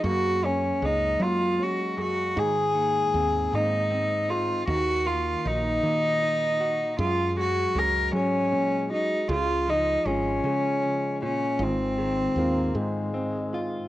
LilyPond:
<<
  \new Staff \with { instrumentName = "Cello" } { \time 6/8 \key ges \lydian \tempo 4. = 52 ges'8 des'8 ees'8 f'8 ges'8 ges'8 | aes'4. ees'4 f'8 | ges'8 f'8 ees'2 | f'8 ges'8 bes'8 des'4 ees'8 |
f'8 ees'8 des'4. des'8 | c'2 r4 | }
  \new Staff \with { instrumentName = "Felt piano" } { \time 6/8 \key ges \lydian <bes aes'>8 bes8 <bes des' aes'>8 bes8 des'8 aes'8 | <ees aes'>8 bes8 <bes c' aes'>8 bes8 c'8 aes'8 | ees8 bes8 <bes ees' ges'>8 bes8 ees'8 ges'8 | aes8 aes8 <aes des' ges'>8 aes8 des'8 ges'8 |
<aes f'>8 aes8 <aes f'>8 aes4 f'8 | <ees f'>8 aes8 <aes c' f'>8 aes8 c'8 f'8 | }
  \new Staff \with { instrumentName = "French horn" } { \time 6/8 \key ges \lydian r2. | r2. | r2. | r2. |
r2. | r4 bes8 aes4. | }
  \new Staff \with { instrumentName = "Clean electric guitar" } { \clef bass \time 6/8 \key ges \lydian << { r4 aes2~ | aes4 c'4 c'8 ees'8 | r4 ees'4 ees'8 ges'8 | r4 aes2~ |
aes4 aes2~ | aes4 c'4 c'8 f'8 | } \\ { <ges, aes>2 r8 ges,8 | aes,8 ees4 aes,4. | ees8 bes4 bes,4. | ges,8 ges4 aes,8 bes,8 r8 |
des8 f4 des8 r8 bes,8 | aes,8 ees4 aes,4. | } >> }
  \new Staff \with { instrumentName = "Fretless electric bass" } { \clef bass \time 6/8 \key ges \lydian ges,4 des,8 ges4. | aes,4 ees,8 aes,4. | ees,4 bes,,8 ees4. | ges,4 des,8 ges4. |
des,4 aes,,8 des4. | aes,,4 ees,8 aes,4. | }
>>